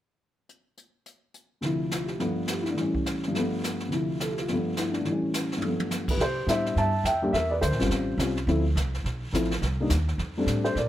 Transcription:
0.49 closed hi-hat soft
0.77 closed hi-hat soft
1.06 closed hi-hat soft
1.34 closed hi-hat soft
1.61 2.19 D2 soft
1.61 2.20 C3 soft
1.61 2.18 F3 soft
1.61 brush sweep soft
1.61 snare soft
1.66 2.22 E4 soft
1.91 2.14 F4 soft
1.91 snare soft
1.91 hi-hat pedal soft
2.06 2.26 G4 soft
2.06 snare soft
2.20 2.77 G2 soft
2.20 2.77 F3 soft
2.20 2.77 A3 soft
2.20 2.77 B3 medium
2.20 brush sweep soft
2.20 snare soft
2.48 2.62 G4 soft
2.48 snare soft
2.48 hi-hat pedal soft
2.57 2.68 F4 soft
2.63 2.72 E4 soft
2.63 snare soft
2.69 2.80 D4 soft
2.74 3.33 A2 soft
2.74 3.34 E3 soft
2.74 3.35 G3 soft
2.74 brush sweep soft
2.74 snare soft
2.79 3.35 C#4 soft
2.95 kick soft
3.06 snare soft
3.06 hi-hat pedal soft
3.23 snare soft
3.28 3.88 G2 soft
3.28 3.90 F3 soft
3.35 3.92 A3 soft
3.35 brush sweep soft
3.35 snare soft
3.39 3.94 B3 medium
3.64 snare soft
3.64 hi-hat pedal soft
3.80 snare soft
3.88 4.47 D2 soft
3.88 4.48 C3 soft
3.88 4.49 F3 soft
3.88 brush sweep soft
3.88 snare soft
3.94 4.50 E4 soft
4.20 4.36 A4 soft
4.20 snare soft
4.20 hi-hat pedal medium
4.32 4.45 G4 soft
4.38 4.54 F4 soft
4.38 snare soft
4.48 5.06 G2 soft
4.48 5.07 F3 soft
4.48 brush sweep soft
4.48 snare soft
4.53 5.08 A3 soft
4.53 5.08 B3 medium
4.77 4.99 E4 soft
4.77 snare soft
4.77 hi-hat pedal soft
4.92 5.11 D4 soft
4.92 snare soft
5.01 5.60 A2 soft
5.01 5.62 E3 soft
5.01 brush sweep soft
5.01 snare soft
5.09 5.64 G3 soft
5.09 5.66 C#4 soft
5.34 snare soft
5.34 hi-hat pedal medium
5.52 snare soft
5.56 6.16 G2 soft
5.60 6.18 F3 soft
5.60 6.20 A3 soft
5.60 high tom soft
5.68 6.22 B3 soft
5.80 high tom soft
5.91 snare soft
5.91 hi-hat pedal soft
6.08 6.19 G4 soft
6.08 6.21 B4 medium
6.08 kick medium
6.08 crash medium
6.18 6.46 C3 medium
6.18 6.47 G4 medium
6.18 6.49 C5 medium
6.18 brush sweep soft
6.18 snare soft
6.47 6.75 A2 medium
6.47 6.90 G3 soft
6.47 6.90 B3 soft
6.47 6.90 D4 soft
6.47 6.91 E4 medium
6.47 6.76 C5 medium
6.47 6.75 E5 medium
6.47 snare soft
6.47 hi-hat pedal soft
6.66 snare soft
6.76 7.03 G2 medium
6.76 7.04 E5 medium
6.76 7.07 A5 medium
6.76 brush sweep soft
6.76 snare soft
7.04 7.32 F2 medium
7.04 7.31 E5 medium
7.04 7.32 G5 medium
7.04 snare soft
7.04 hi-hat pedal soft
7.22 7.32 G3 medium
7.22 7.33 A#3 medium
7.22 7.33 D4 medium
7.22 7.33 G4 medium
7.33 7.61 E2 medium
7.33 7.50 A#4 medium
7.33 7.51 E5 medium
7.33 brush sweep soft
7.33 snare soft
7.50 7.56 B4 medium
7.50 7.55 D5 medium
7.61 7.72 D2 medium
7.61 7.89 A#4 soft
7.61 8.15 C5 medium
7.61 snare soft
7.61 hi-hat pedal soft
7.72 7.80 A#1 soft
7.72 snare soft
7.79 7.88 G1 medium
7.79 8.17 G3 medium
7.79 8.17 C4 soft
7.79 8.17 C#4 soft
7.79 8.17 F4 medium
7.79 snare soft
7.81 snare soft
7.89 8.17 A1 medium
7.89 brush sweep soft
7.89 snare soft
8.18 8.46 C2 medium
8.18 8.35 G3 soft
8.18 8.35 C4 soft
8.18 8.35 C#4 soft
8.18 8.36 F4 medium
8.18 snare medium
8.18 hi-hat pedal medium
8.37 snare soft
8.47 8.75 D2 medium
8.47 8.63 F3 medium
8.47 8.64 A3 soft
8.47 8.64 C4 medium
8.47 8.64 E4 medium
8.47 brush sweep soft
8.47 snare soft
8.76 9.03 C2 medium
8.76 snare medium
8.76 hi-hat pedal soft
8.94 snare soft
9.04 9.32 B1 medium
9.04 brush sweep soft
9.04 snare soft
9.33 9.60 A1 medium
9.33 9.49 F3 medium
9.33 9.49 A3 soft
9.33 9.49 C4 medium
9.33 9.49 E4 medium
9.33 snare medium
9.33 hi-hat pedal medium
9.45 snare soft
9.51 snare soft
9.62 9.89 C2 medium
9.62 brush sweep soft
9.62 snare soft
9.80 9.90 G3 medium
9.80 9.90 A#3 soft
9.80 9.90 D4 medium
9.80 9.90 D#4 medium
9.90 10.18 D#2 medium
9.90 snare medium
9.90 hi-hat pedal soft
10.08 snare soft
10.18 10.46 F2 medium
10.18 brush sweep soft
10.18 snare soft
10.37 10.74 G3 medium
10.37 10.74 A3 medium
10.37 10.74 C4 soft
10.37 10.75 D4 medium
10.46 10.74 A2 medium
10.46 snare soft
10.46 hi-hat pedal soft
10.65 10.76 A4 soft
10.65 10.75 C5 medium
10.65 snare soft
10.75 10.89 A#2 medium
10.75 10.89 D5 medium
10.75 brush sweep soft
10.75 snare soft
10.79 10.89 A#4 medium

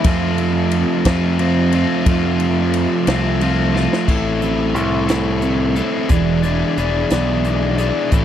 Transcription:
0.04 0.83 F2 loud
0.04 1.05 F3 medium
0.04 1.06 A3 loud
0.04 1.06 C4 medium
0.04 4.05 F4 medium
0.04 1.06 F4 loud
0.04 4.05 E5 medium
0.04 4.05 A5 medium
0.04 kick loud
0.04 ride medium
0.38 ride medium
0.71 ride medium
1.05 1.84 F2 loud
1.05 1.38 F3 medium
1.05 1.40 A3 loud
1.05 1.40 C4 loud
1.05 1.40 F4 loud
1.05 kick medium
1.05 snare loud
1.05 ride medium
1.39 1.73 F3 medium
1.39 1.74 A3 medium
1.39 1.75 C4 medium
1.39 1.74 F4 medium
1.39 ride medium
1.72 2.06 F3 medium
1.72 2.06 A3 medium
1.72 2.07 C4 medium
1.72 2.08 F4 medium
1.72 ride medium
2.06 2.85 F2 loud
2.06 3.06 F3 medium
2.06 3.07 A3 loud
2.06 3.07 C4 medium
2.06 3.07 F4 loud
2.06 kick loud
2.06 ride loud
2.40 ride medium
2.74 ride medium
3.07 3.86 C2 medium
3.07 3.40 F3 medium
3.07 3.41 A3 loud
3.07 3.41 C4 loud
3.07 3.42 F4 medium
3.07 snare loud
3.07 ride medium
3.41 3.73 F3 medium
3.41 3.74 A3 medium
3.41 3.74 C4 medium
3.41 3.74 F4 medium
3.41 ride medium
3.74 4.06 F3 medium
3.74 4.06 A3 medium
3.74 4.07 C4 medium
3.74 4.07 F4 medium
3.74 snare medium
3.93 snare medium
4.07 4.74 A1 medium
4.07 5.77 A2 medium
4.07 4.73 A3 medium
4.07 4.43 C4 medium
4.07 4.42 E4 medium
4.07 4.40 A4 medium
4.07 kick loud
4.07 crash loud
4.41 4.74 C4 soft
4.41 4.75 E4 medium
4.41 4.76 A4 medium
4.41 closed hi-hat medium
4.74 5.80 C2 medium
4.74 5.09 A3 medium
4.74 5.08 C4 medium
4.74 5.08 E4 medium
4.74 5.06 A4 medium
4.74 closed hi-hat medium
5.07 6.09 A3 medium
5.07 5.77 C4 medium
5.07 5.76 E4 medium
5.07 5.74 A4 medium
5.07 snare loud
5.07 closed hi-hat medium
5.42 6.10 C4 medium
5.42 closed hi-hat medium
5.75 6.09 C4 medium
5.75 6.10 E4 medium
5.75 6.08 A4 medium
5.75 closed hi-hat medium
6.09 6.63 E1 medium
6.09 6.83 E3 medium
6.09 6.77 G#3 medium
6.09 6.44 B3 medium
6.09 6.44 E4 medium
6.09 6.43 G#4 loud
6.09 6.41 D5 medium
6.09 kick loud
6.09 closed hi-hat medium
6.43 6.76 B3 medium
6.43 7.44 D4 medium
6.43 6.78 E4 medium
6.43 6.78 G#4 medium
6.43 6.79 D5 medium
6.43 closed hi-hat medium
6.77 7.04 E1 medium
6.77 7.11 B3 medium
6.77 7.11 E4 medium
6.77 7.10 G#4 medium
6.77 7.10 D5 medium
6.77 closed hi-hat medium
7.10 7.90 B1 medium
7.10 8.25 E3 medium
7.10 8.11 G#3 medium
7.10 7.79 B3 medium
7.10 7.79 E4 medium
7.10 7.78 G#4 medium
7.10 7.77 D5 medium
7.10 snare loud
7.10 closed hi-hat medium
7.45 8.12 D4 medium
7.45 closed hi-hat medium
7.78 8.11 B3 medium
7.78 8.13 E4 medium
7.78 8.10 G#4 medium
7.78 8.10 D5 medium
7.78 closed hi-hat medium
8.11 8.25 A1 medium
8.11 8.25 A2 medium
8.11 8.25 A3 medium
8.11 8.25 C4 medium
8.11 8.25 E4 medium
8.11 8.25 A4 medium
8.11 kick loud
8.11 closed hi-hat medium

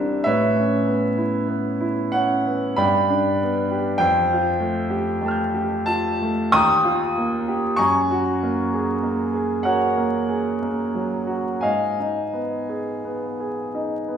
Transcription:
0.00 0.23 C2 soft
0.00 0.15 G3 soft
0.00 0.29 C4 soft
0.00 0.29 D4 soft
0.00 0.29 E4 soft
0.00 0.23 A#4 medium
0.00 0.23 C5 medium
0.00 0.22 E5 medium
0.24 2.76 A2 soft
0.24 2.10 B4 medium
0.24 2.10 C#5 medium
0.24 2.13 E5 medium
0.56 1.06 C#4 soft
0.87 1.37 B3 soft
1.18 1.68 E4 soft
1.48 2.00 B3 soft
1.80 2.34 E4 soft
2.12 2.67 C#4 soft
2.12 2.79 F#5 medium
2.46 2.80 B3 soft
2.76 3.97 G2 medium
2.76 3.97 D5 medium
2.76 3.96 G5 medium
2.76 4.00 B5 medium
3.10 3.60 D4 soft
3.43 3.91 B3 soft
3.71 4.02 G4 soft
3.98 6.50 F2 medium
3.98 5.84 C5 medium
3.98 5.20 G5 medium
4.33 4.80 F4 soft
4.60 5.10 A3 soft
4.90 5.41 G4 medium
5.21 5.75 A3 soft
5.21 6.50 G5 soft
5.26 5.84 A5 soft
5.26 6.54 F6 soft
5.31 6.55 G6 soft
5.54 6.09 G4 soft
5.86 6.42 F4 soft
5.86 6.54 A5 medium
6.22 6.55 A3 soft
6.52 7.73 D#2 medium
6.52 7.73 G5 medium
6.52 7.73 A#5 medium
6.52 7.77 D#6 medium
6.85 7.34 F4 medium
7.18 7.66 A#3 soft
7.48 7.79 G4 soft
7.76 11.60 F#2 medium
7.76 9.61 G#5 medium
7.76 9.62 A#5 medium
7.76 9.65 C#6 medium
8.11 8.60 F#4 soft
8.43 8.92 A#3 soft
8.74 9.23 G#4 soft
9.03 9.53 A#3 soft
9.34 9.84 G#4 soft
9.63 10.16 F#4 soft
9.63 11.59 A#4 medium
9.63 11.59 C#5 medium
9.63 11.62 F#5 medium
9.97 10.48 A#3 soft
10.29 10.81 G#4 soft
10.62 11.15 A#3 soft
10.95 11.50 F#3 soft
11.27 11.63 F#4 soft
11.61 14.17 G#2 soft
11.61 14.17 D#5 soft
11.61 14.17 F5 medium
11.61 14.17 G#5 medium
12.00 12.55 D#4 soft
12.33 12.90 B3 soft
12.69 13.25 G#4 soft
13.05 13.60 B3 soft
13.40 13.95 G#4 soft
13.74 14.17 D#4 soft
14.08 14.17 B3 soft

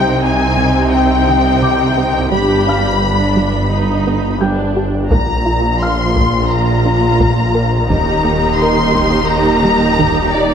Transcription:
0.00 2.28 C2 medium
0.00 2.33 C2 medium
0.00 2.27 C3 medium
0.00 2.28 C4 medium
0.00 2.27 D#4 soft
0.00 0.22 G5 medium
0.00 0.53 C6 soft
0.22 0.91 G#5 medium
0.57 0.78 C3 medium
0.92 2.29 G5 medium
1.27 1.48 D#3 medium
1.62 1.83 C3 medium
1.62 3.67 D6 medium
1.97 2.18 C4 medium
2.31 5.12 G1 medium
2.31 4.91 G1 medium
2.31 4.91 G2 soft
2.31 2.53 G3 medium
2.31 2.93 D4 soft
2.31 2.93 G4 soft
2.31 4.37 B5 medium
2.67 2.88 D4 medium
2.67 4.73 F5 soft
2.67 4.73 F6 soft
3.01 3.67 D4 soft
3.37 3.57 G3 medium
3.71 4.40 D#4 soft
4.07 4.28 B3 soft
4.41 4.62 G3 medium
4.41 5.09 D4 soft
4.41 6.46 G5 soft
4.41 6.46 G6 soft
4.76 4.97 G4 medium
5.10 7.91 A#1 medium
5.10 7.86 A#1 medium
5.10 7.86 A#2 soft
5.10 5.32 A#3 medium
5.10 5.76 A#5 medium
5.10 taiko medium
5.46 5.67 F4 medium
5.80 7.90 F4 soft
5.80 7.87 F5 soft
5.80 6.50 C6 medium
5.80 7.87 F6 soft
6.15 6.37 A#3 medium
6.15 taiko medium
6.49 7.88 A#5 medium
6.86 7.06 D4 medium
7.20 7.41 A#3 medium
7.20 taiko medium
7.55 7.76 A#4 medium
7.89 10.54 D#1 medium
7.89 10.54 D#2 medium
7.89 10.54 D#3 medium
7.89 8.11 D#3 medium
7.89 10.54 D#4 soft
7.89 10.54 G4 medium
7.89 8.58 A#5 medium
7.89 taiko medium
8.25 8.46 A#3 medium
8.59 10.54 A#4 soft
8.59 10.54 A#5 soft
8.59 9.29 C6 medium
8.94 9.15 D#3 medium
8.94 taiko medium
9.29 10.34 A#5 medium
9.64 9.85 G3 medium
9.99 10.20 D#3 medium
9.99 taiko medium
10.34 10.54 D#4 medium
10.34 10.54 D5 medium

